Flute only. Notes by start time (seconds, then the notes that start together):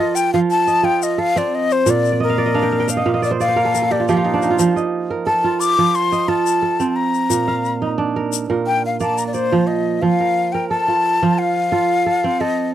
Already playing: D#5
0.15 G5
0.33 F5
0.51 A5
0.84 G5
1.03 D#5
1.19 F5
1.38 D5
1.55 D#5
1.72 C5
1.90 D5
2.23 A#4
2.90 F5
3.24 D5
3.41 F5
3.92 D5
4.10 F5
5.27 A5
5.60 D6
5.95 C6
6.28 A5
6.96 A#5
8.67 G5
8.86 F5
9.01 A5
9.18 A#5
9.27 D5
9.34 C5
9.67 D#5
10.02 F5
10.52 G5
10.69 A5
11.38 F5
12.41 D#5